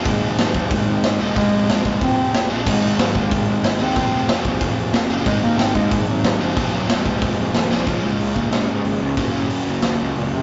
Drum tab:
CC |--------|--------|x-------|--------|
HH |o-o-o-o-|o-o-o-o-|--o-o-o-|o-o-o-o-|
SD |--o---o-|--o---o-|--o---o-|--o---o-|
BD |o--oo---|o--oo---|o--oo---|o--oo---|

CC |--------|--------|--------|--------|
HH |o-o-o-o-|o-o-o-o-|o-o-o-o-|o-o-o-o-|
SD |--o---o-|--o---oo|----o---|----o---|
BD |o--oo---|o--oo---|o--o----|o-------|